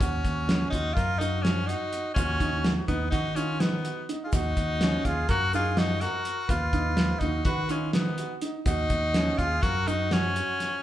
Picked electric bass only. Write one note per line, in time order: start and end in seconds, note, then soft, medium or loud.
0.01 0.20 D#2 medium
0.24 0.63 D#2 medium
0.73 0.92 D#2 medium
0.97 1.73 F#2 medium
2.17 2.36 D#2 loud
2.40 2.79 D#2 medium
2.89 3.08 D#2 medium
3.12 3.89 D#3 medium
4.33 4.52 D#2 medium
4.57 4.95 D#2 medium
5.05 5.24 D#2 medium
5.29 6.05 F#2 medium
6.49 6.68 D#2 loud
6.73 7.12 D#2 medium
7.21 7.40 D#2 medium
7.45 8.22 D#3 medium
8.66 8.85 D#2 medium
8.91 9.29 D#2 medium
9.39 9.58 D#2 medium
9.63 10.40 F#2 medium